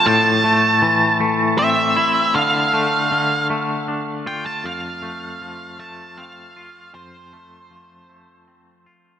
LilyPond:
<<
  \new Staff \with { instrumentName = "Lead electric guitar" } { \time 3/4 \key f \lydian \tempo 4 = 78 a''4. r8 e''4 | f''4. r4 g''16 a''16 | f''4. a''8 f''4 | c''2 r4 | }
  \new Staff \with { instrumentName = "Clean electric guitar" } { \time 3/4 \key f \lydian a,8 a8 e8 a8 c'8 e'8 | d8 a8 d8 a8 d'8 f'8 | f,8 a8 f8 a8 c'8 f'8 | f,8 a8 f8 a8 c'8 f'8 | }
>>